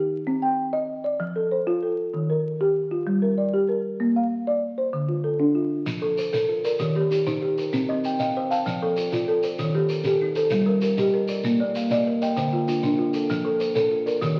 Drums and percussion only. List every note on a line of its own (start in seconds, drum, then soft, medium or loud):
5.87 shekere medium
6.18 shekere medium
6.33 shekere medium
6.65 shekere medium
6.79 shekere medium
7.12 shekere medium
7.27 shekere medium
7.58 shekere medium
7.73 shekere medium
8.04 shekere soft
8.19 shekere medium
8.52 shekere soft
8.67 shekere medium
8.97 shekere medium
9.13 shekere medium
9.43 shekere medium
9.59 shekere medium
9.89 shekere soft
10.04 shekere medium
10.35 shekere medium
10.50 shekere medium
10.81 shekere medium
10.98 shekere medium
11.28 shekere medium
11.44 shekere medium
11.75 shekere medium
11.90 shekere medium
12.22 shekere medium
12.37 shekere medium
12.68 shekere medium
12.83 shekere medium
13.14 shekere medium
13.30 shekere medium
13.60 shekere medium
13.76 shekere medium
14.07 shekere medium
14.22 shekere medium